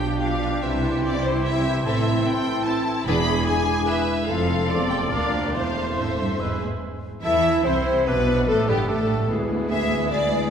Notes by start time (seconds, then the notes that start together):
Already playing: B1 B2 F3 D4 F4 G4 G5 D6
0.21 D4 F4 F5
0.61 C2 C3 E3 C4 E4 G4 E5 C6
1.04 E4 D5
1.24 C5
1.45 C4 E4 E5
1.84 A1 A2 C4 E4 A4 E5
2.26 G5
2.66 E4 A5
3.05 E1 E2 E3 G#3 D4 E4 G#4 B5 D6
3.47 G#5
3.88 B4 E5
4.28 F1 F2 F3 A3 C4 A4 F5 C6
4.70 E1 E2 D5
4.91 G5
5.11 D2 A#3 D4 F4 A#4 F5 D6
5.33 G4
5.53 E1 E2 A3 C4 E4 A4 C5 F5 C6
5.97 A2 A4 C5 E5
6.19 G2
6.40 E1 G#2 G#3 B3 G#4 B4 E6
6.62 A2
7.24 E2 E3 E4 A4 E5
7.65 C2 C3 C4 E4 C5
8.07 B1 B2 B3 D4 B4
8.48 A1 A2 A3 D4 A4
8.68 G1 G2 G3 B3 G4
8.88 A1 A2 A3 D4 A4
9.29 D2 E3 G#3 B3 E4 G#4
9.70 E3 G#3 E4 G#4 E5
10.10 E3 G#3 E4 G#4 D5